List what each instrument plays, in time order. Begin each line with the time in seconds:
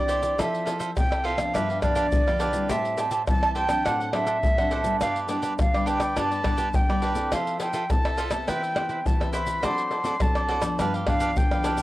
Already playing: nylon-string guitar E3 C4 D4 G4, flute D5
0.08 cavaquinho E4 G4 C5 D5, pandeiro, shaker
0.22 pandeiro, shaker
0.38 nylon-string guitar F3 C4 E4 A4, cavaquinho F4 A4 C5 E5, flute E5, pandeiro, tamborim, shaker, surdo
0.55 pandeiro, shaker
0.65 cavaquinho F4 A4 C5 E5, pandeiro, shaker
0.79 cavaquinho F4 A4 C5 E5, pandeiro, shaker
0.96 nylon-string guitar C3 C4 E4 A4, flute G5, pandeiro, tamborim, shaker, surdo
1.11 cavaquinho A4 C5 E5, pandeiro, tamborim, shaker
1.24 cavaquinho F4 A4 C5 E5, flute F5, pandeiro
1.37 nylon-string guitar F3 B3 D4, cavaquinho A4 E5, pandeiro, tamborim, shaker
1.54 nylon-string guitar G2, cavaquinho D4 G4 B4 F5, flute E5, pandeiro, tamborim, shaker, surdo
1.69 cavaquinho G4 B4 F5, pandeiro, shaker
1.82 nylon-string guitar F3 B3 D4, cavaquinho D4 G4 B4 F5, flute D5, pandeiro, tamborim, shaker, surdo
1.95 cavaquinho D4 G4 B4 F5, pandeiro, shaker
2.12 nylon-string guitar D3, pandeiro, shaker, surdo
2.27 nylon-string guitar F3 B3 D4, cavaquinho G4 B4 F5, pandeiro, tamborim, shaker
2.39 cavaquinho D4 G4 B4 F5, pandeiro, shaker
2.53 nylon-string guitar G3 C4 E4, pandeiro, shaker
2.69 nylon-string guitar A2, cavaquinho G4 C5 E5 A5, flute E5, pandeiro, tamborim, shaker, surdo
2.85 pandeiro, shaker
2.97 cavaquinho G4 C5 E5 A5, pandeiro, shaker
3.11 cavaquinho G4 C5 E5 A5, pandeiro, shaker
3.27 nylon-string guitar E3 G3 C4 E4, flute A5, pandeiro, tamborim, shaker, surdo
3.42 cavaquinho C5 E5 A5, pandeiro, tamborim, shaker
3.55 cavaquinho G4 C5 E5 A5, flute G5, pandeiro
3.68 nylon-string guitar F#3 C4 D4, cavaquinho C5 E5 A5, pandeiro, tamborim, shaker
3.85 nylon-string guitar A2, cavaquinho D4 A4 C5 F#5, flute F#5, pandeiro, tamborim, shaker, surdo
4.00 cavaquinho A4 C5 F#5, pandeiro, shaker
4.13 nylon-string guitar F#3 C4 D4, cavaquinho D4 A4 C5 F#5, flute E5, pandeiro, tamborim
4.26 cavaquinho D4 A4 C5 F#5, pandeiro, shaker
4.43 nylon-string guitar A2, pandeiro, shaker, surdo
4.58 nylon-string guitar F#3 C4 D4, cavaquinho A4 C5 F#5, pandeiro, tamborim, shaker
4.71 cavaquinho D4 A4 C5 F#5, pandeiro
4.84 nylon-string guitar G3 B3 D4, pandeiro, shaker
5.01 nylon-string guitar G2, cavaquinho D4 G4 B4 D5, flute F5, pandeiro, tamborim, shaker, surdo
5.16 pandeiro, shaker
5.28 nylon-string guitar G3 B3 D4, cavaquinho D4 G4 B4 D5, pandeiro, shaker
5.42 cavaquinho D4 G4 B4 D5, pandeiro, shaker
5.59 nylon-string guitar D3, flute F5, pandeiro, tamborim, shaker, surdo
5.74 nylon-string guitar G3 B3 D4, cavaquinho G4 B4 D5, pandeiro, tamborim, shaker
5.86 cavaquinho D4 G4 B4 D5, flute G5, pandeiro, shaker
5.99 cavaquinho G4 B4 D5, pandeiro, tamborim, shaker
6.16 nylon-string guitar G2 G3 B3 D4, cavaquinho D4 G4 B4 D5, flute A5, pandeiro, tamborim, shaker, surdo
6.31 cavaquinho G4 B4 D5, pandeiro, shaker
6.44 nylon-string guitar G3 B3 D4, cavaquinho D4 G4 B4 D5, pandeiro, tamborim, surdo
6.57 cavaquinho D4 G4 B4 D5, pandeiro, shaker
6.74 nylon-string guitar D3, flute G5, pandeiro, shaker, surdo
6.89 nylon-string guitar G3 B3 D4, cavaquinho G4 B4 D5, pandeiro, tamborim, shaker
7.02 cavaquinho D4 G4 B4 D5, pandeiro
7.15 nylon-string guitar C4 E4 A4, pandeiro, shaker
7.32 nylon-string guitar F3, cavaquinho F4 A4 C5 E5, flute F5, pandeiro, tamborim, shaker, surdo
7.47 pandeiro, shaker
7.60 cavaquinho F4 A4 C5 E5, flute G5, pandeiro, shaker
7.73 cavaquinho F4 A4 C5 E5, pandeiro, shaker
7.90 nylon-string guitar C3 C4 E4 A4, flute A5, pandeiro, tamborim, shaker, surdo
8.05 cavaquinho A4 C5 E5, pandeiro, tamborim, shaker
8.17 cavaquinho F4 A4 C5 E5, pandeiro, shaker
8.31 nylon-string guitar B3 C4 G4, cavaquinho A4 C5 E5, pandeiro, tamborim, shaker
8.47 nylon-string guitar E3, cavaquinho E4 B4 C5 E5, flute G5, pandeiro, tamborim, shaker, surdo
8.62 cavaquinho B4 C5 E5, pandeiro, shaker
8.75 nylon-string guitar B3 C4 G4, cavaquinho E4 B4 C5 E5, pandeiro, tamborim
8.89 cavaquinho E4 B4 C5 E5, pandeiro, shaker
9.05 nylon-string guitar E3, flute A5, pandeiro, shaker, surdo
9.20 nylon-string guitar B3 C4 G4, cavaquinho B4 C5 E5, pandeiro, tamborim, shaker
9.33 cavaquinho E4 B4 C5 E5, flute B5, pandeiro, shaker
9.47 pandeiro, shaker
9.63 nylon-string guitar F#3 C4 D4 A4, cavaquinho F#4 A4 C5 D5, flute C6, pandeiro, tamborim, shaker, surdo
9.78 pandeiro, shaker
9.91 cavaquinho F#4 A4 C5 D5, pandeiro, shaker
10.04 nylon-string guitar C4 D4 A4, cavaquinho F#4 A4 C5 D5, pandeiro, shaker
10.20 nylon-string guitar F#3 C4 D4 A4, flute A5, pandeiro, tamborim, shaker, surdo
10.35 cavaquinho A4 C5 D5, pandeiro, tamborim, shaker
10.49 cavaquinho F#4 A4 C5 D5, pandeiro
10.62 nylon-string guitar F3 B3 D4, cavaquinho A4 C5 D5, pandeiro, tamborim, shaker
10.79 nylon-string guitar G2, cavaquinho D4 G4 B4 F5, pandeiro, tamborim, shaker, surdo
10.94 cavaquinho G4 B4 F5, pandeiro, shaker
11.06 nylon-string guitar F3 B3 D4, cavaquinho D4 G4 B4 F5, flute F5, pandeiro, tamborim, surdo
11.20 cavaquinho D4 G4 B4 F5, pandeiro, shaker
11.37 nylon-string guitar D3, flute G5, pandeiro, shaker, surdo
11.51 nylon-string guitar F3 B3 D4, cavaquinho G4 B4 F5, pandeiro, tamborim, shaker
11.64 cavaquinho D4 G4 B4 F5, pandeiro, shaker
11.78 pandeiro, shaker